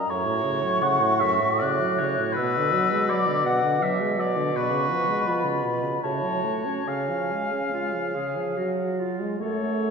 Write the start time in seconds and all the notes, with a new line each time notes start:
Already playing: D#5 A#5
0.08 F#2 A2 F#4 C#5 C#6
0.26 A2
0.44 C#3
0.62 F#3
0.81 C#3 F#5
1.01 A2
1.20 F#2 E5
1.41 A2
1.59 C#3 D5 F#6
1.81 F#3
1.99 C#3 C#5
2.19 A2
2.33 B4 E6
2.38 B2
2.57 D3
2.73 F#3
2.92 G#3
3.09 F#3 D5 D6
3.28 D3
3.45 B2 F#5
3.63 D3
3.82 F#3 E5
4.01 G#3
4.18 F#3 D5
4.37 D3
4.54 B2 B4 C#6
4.71 C#3
4.90 F3
5.08 G#3
5.26 F3 F4 B5
5.44 C#3
5.63 B2
5.83 C#3
6.02 A2 C#3 F#4 C#5 A5
6.22 F#3
6.44 A3
6.65 C#4
6.87 C#3 F5 G#5
7.09 F3
7.31 G#3
7.52 C#4
7.72 G#3 F4
7.94 F3
8.15 C#3 G#4
8.36 F3
8.57 F#3 F#4
9.00 F4
9.21 G#3
9.39 F#2 A3 A4 C#5 F#5